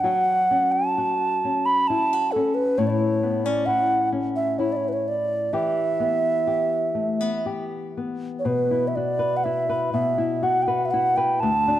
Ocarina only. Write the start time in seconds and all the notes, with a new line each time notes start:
0.01 F#5
0.72 A5
1.66 B5
1.88 A5
2.32 A4
2.55 B4
2.78 C#5
2.87 C#5 D5
3.45 D5
3.66 F#5
4.36 E5
4.59 C#5
4.72 D5
4.77 C#5
4.89 B4
4.93 C#5
5.08 D5
5.53 E5
8.39 C#5
8.46 B4
8.88 E5
8.96 D5
9.37 F#5
9.44 E5
9.93 E5
10.43 F#5
10.62 G5
10.67 F#5
10.86 E5
10.91 F#5
11.16 G5
11.40 A5